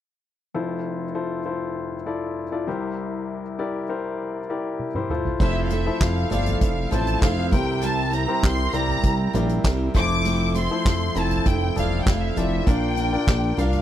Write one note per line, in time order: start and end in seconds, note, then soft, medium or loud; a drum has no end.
0.55 2.63 F1 medium
0.55 2.63 F2 medium
0.55 1.04 E4 medium
0.55 1.04 F4 medium
0.55 1.04 A4 medium
0.55 1.04 C5 medium
1.15 1.40 E4 medium
1.15 1.40 F4 medium
1.15 1.40 A4 medium
1.15 1.40 C5 medium
1.46 1.95 E4 medium
1.46 1.95 F4 medium
1.46 1.95 A4 medium
1.46 1.95 C5 medium
2.06 2.44 E4 medium
2.06 2.44 F4 medium
2.06 2.44 A4 medium
2.06 2.44 D5 medium
2.52 2.66 E4 medium
2.52 2.67 F4 medium
2.52 2.67 A4 medium
2.52 2.67 D5 medium
2.67 5.06 C2 medium
2.67 5.06 C3 medium
2.67 3.42 E4 medium
2.67 3.42 G4 medium
2.67 3.42 A#4 medium
2.67 3.42 C5 medium
3.59 3.83 E4 medium
3.59 3.83 G4 medium
3.59 3.83 A#4 medium
3.59 3.83 D5 medium
3.89 4.39 E4 medium
3.89 4.39 G4 medium
3.89 4.39 A#4 medium
3.89 4.39 C5 medium
4.50 4.87 E4 medium
4.50 4.87 G4 medium
4.50 4.87 A#4 medium
4.50 4.87 D5 medium
4.79 high tom soft
4.95 5.09 E4 medium
4.95 5.10 G4 medium
4.95 5.10 A#4 medium
4.95 5.09 C5 medium
4.95 mid tom medium
5.10 5.35 E4 medium
5.10 5.35 F4 medium
5.10 5.35 A4 medium
5.10 5.35 C5 medium
5.10 mid tom medium
5.25 floor tom medium
5.40 5.90 F1 loud
5.40 5.70 F3 medium
5.40 5.78 F3 medium
5.40 5.69 A3 medium
5.40 5.70 C4 medium
5.40 5.78 E4 medium
5.40 5.71 E4 loud
5.40 5.78 A4 medium
5.40 5.71 A4 loud
5.40 5.78 C5 medium
5.40 5.62 E5 medium
5.40 kick loud
5.40 crash medium
5.64 5.71 F5 medium
5.70 6.29 A3 medium
5.70 6.31 C4 medium
5.70 6.32 E4 medium
5.70 6.32 A4 medium
5.70 6.01 E5 medium
5.70 closed hi-hat medium
5.86 6.23 F3 medium
5.86 6.23 E4 medium
5.86 6.24 A4 medium
5.86 6.23 C5 medium
6.01 6.26 F1 loud
6.01 6.31 F5 medium
6.01 kick loud
6.01 snare loud
6.01 clap medium
6.01 closed hi-hat medium
6.30 6.56 G1 medium
6.30 6.81 F3 medium
6.30 6.90 A3 medium
6.30 6.81 C4 medium
6.30 6.92 C4 medium
6.30 6.93 E4 medium
6.30 6.81 A4 medium
6.30 6.93 A4 medium
6.30 6.81 D5 medium
6.30 6.60 F5 medium
6.30 closed hi-hat medium
6.30 floor tom medium
6.46 closed hi-hat soft
6.46 floor tom medium
6.61 6.86 F1 loud
6.61 6.90 F5 medium
6.61 kick loud
6.61 closed hi-hat medium
6.91 7.17 A1 medium
6.91 7.42 F3 medium
6.91 7.20 A3 medium
6.91 7.21 C4 medium
6.91 7.42 E4 medium
6.91 7.22 E4 medium
6.91 7.42 A4 medium
6.91 7.23 A4 medium
6.91 7.42 C5 medium
6.91 7.22 A5 medium
6.91 closed hi-hat medium
6.91 floor tom medium
7.07 closed hi-hat soft
7.21 7.54 F1 loud
7.21 7.51 A3 medium
7.21 7.51 C4 medium
7.21 7.53 E4 medium
7.21 7.53 A4 medium
7.21 7.52 F5 medium
7.21 kick loud
7.21 snare loud
7.21 clap medium
7.21 closed hi-hat medium
7.51 8.27 C2 loud
7.51 8.39 C3 medium
7.51 7.82 G3 medium
7.51 7.82 C4 medium
7.51 8.15 E4 medium
7.51 8.15 G4 medium
7.51 7.82 G4 medium
7.51 8.15 A#4 medium
7.51 7.83 A#4 medium
7.51 8.15 C5 medium
7.51 7.81 G5 medium
7.51 kick loud
7.51 closed hi-hat medium
7.51 floor tom medium
7.82 8.12 C3 medium
7.82 8.13 E3 medium
7.82 8.11 G3 medium
7.82 8.12 C4 medium
7.82 8.13 G4 medium
7.82 8.13 A#4 loud
7.82 8.13 A5 medium
7.82 closed hi-hat medium
8.12 8.71 G3 medium
8.12 8.73 C4 medium
8.12 8.73 G4 medium
8.12 8.74 A#4 medium
8.12 8.43 A#5 medium
8.12 closed hi-hat medium
8.28 8.65 E4 medium
8.28 8.65 G4 medium
8.28 8.65 A#4 medium
8.28 8.66 C5 medium
8.43 8.68 C2 medium
8.43 8.74 C6 loud
8.43 kick loud
8.43 snare loud
8.43 clap medium
8.43 closed hi-hat medium
8.72 8.98 C2 medium
8.72 9.32 G3 medium
8.72 9.34 C4 medium
8.72 9.23 E4 medium
8.72 9.23 G4 medium
8.72 9.34 G4 medium
8.72 9.23 A#4 medium
8.72 9.35 A#4 medium
8.72 9.24 D5 medium
8.72 9.34 A#5 loud
8.72 closed hi-hat medium
8.88 floor tom medium
9.03 9.28 C2 medium
9.03 kick loud
9.03 closed hi-hat medium
9.33 9.59 A#1 loud
9.33 9.63 G3 medium
9.33 9.64 C4 medium
9.33 9.84 E4 medium
9.33 9.84 G4 medium
9.33 9.65 G4 medium
9.33 9.84 A#4 medium
9.33 9.65 A#4 medium
9.33 9.84 D5 medium
9.33 closed hi-hat medium
9.33 floor tom medium
9.49 closed hi-hat soft
9.64 9.89 C2 loud
9.64 9.94 G3 medium
9.64 9.94 C4 medium
9.64 9.95 G4 medium
9.64 9.96 A#4 medium
9.64 kick loud
9.64 snare loud
9.64 clap medium
9.64 closed hi-hat medium
9.94 10.69 F1 loud
9.94 10.57 F3 medium
9.94 10.24 A3 medium
9.94 10.25 C4 medium
9.94 10.57 E4 medium
9.94 10.25 E4 medium
9.94 10.57 A4 medium
9.94 10.26 A4 medium
9.94 10.57 C5 medium
9.94 10.52 D6 loud
9.94 kick loud
9.94 closed hi-hat medium
9.94 floor tom medium
10.25 10.55 F3 medium
10.25 10.53 A3 medium
10.25 10.54 C4 loud
10.25 10.56 E4 medium
10.25 10.56 A4 medium
10.25 closed hi-hat medium
10.55 11.14 A3 medium
10.55 11.15 C4 medium
10.55 11.16 E4 medium
10.55 11.17 A4 medium
10.55 11.17 C6 medium
10.55 closed hi-hat medium
10.71 11.08 F3 medium
10.71 11.08 E4 medium
10.71 11.08 A4 medium
10.71 11.08 C5 medium
10.85 11.10 F1 loud
10.85 kick loud
10.85 snare loud
10.85 clap medium
10.85 closed hi-hat medium
11.15 11.40 F1 medium
11.15 11.66 F3 medium
11.15 11.74 A3 medium
11.15 11.76 C4 medium
11.15 11.66 E4 medium
11.15 11.77 E4 medium
11.15 11.66 A4 medium
11.15 11.77 A4 medium
11.15 11.66 C5 medium
11.15 11.47 A5 loud
11.15 closed hi-hat medium
11.31 closed hi-hat soft
11.31 floor tom medium
11.46 11.71 F1 loud
11.46 11.77 G5 medium
11.46 kick loud
11.46 closed hi-hat medium
11.76 12.01 E1 medium
11.76 12.26 F3 medium
11.76 12.05 A3 medium
11.76 12.06 C4 medium
11.76 12.26 E4 medium
11.76 12.07 E4 medium
11.76 12.26 A4 medium
11.76 12.08 A4 medium
11.76 12.26 D5 medium
11.76 12.00 F5 medium
11.76 closed hi-hat medium
11.76 floor tom medium
12.01 12.10 G5 medium
12.06 12.31 F1 medium
12.06 12.35 A3 medium
12.06 12.36 C4 medium
12.06 12.37 E4 medium
12.06 12.38 A4 medium
12.06 kick loud
12.06 snare loud
12.06 clap medium
12.06 closed hi-hat medium
12.11 12.19 F5 medium
12.20 12.29 E5 medium
12.29 12.38 F5 medium
12.36 12.62 F1 loud
12.36 12.67 A3 medium
12.36 12.67 C4 medium
12.36 12.62 E4 medium
12.36 12.68 E4 medium
12.36 12.62 F4 medium
12.36 12.62 A4 medium
12.36 12.68 A4 medium
12.36 12.62 D5 medium
12.36 12.68 E5 medium
12.36 closed hi-hat medium
12.36 floor tom medium
12.67 13.17 A#1 loud
12.67 12.97 A#2 medium
12.67 13.54 A#2 medium
12.67 12.97 F3 medium
12.67 12.96 A#3 medium
12.67 13.04 D4 medium
12.67 12.97 D4 medium
12.67 13.05 F4 medium
12.67 12.98 F4 loud
12.67 13.05 A#4 medium
12.67 12.98 A#4 medium
12.67 13.05 D5 medium
12.67 13.59 G5 loud
12.67 kick loud
12.67 closed hi-hat medium
12.97 13.56 A#3 medium
12.97 13.57 D4 medium
12.97 13.59 F4 medium
12.97 13.59 A#4 medium
12.97 closed hi-hat medium
13.13 13.50 D4 medium
13.13 13.50 F4 medium
13.13 13.50 A#4 medium
13.13 13.50 D5 medium
13.27 13.52 A#1 loud
13.27 kick loud
13.27 snare loud
13.27 clap medium
13.27 closed hi-hat medium
13.57 13.82 C2 medium
13.57 13.82 A#3 medium
13.57 13.82 D4 medium
13.57 13.82 F4 medium
13.57 13.82 A#4 medium
13.57 13.82 D5 medium
13.57 13.82 F5 medium
13.57 closed hi-hat medium
13.57 floor tom medium
13.73 closed hi-hat soft
13.73 floor tom medium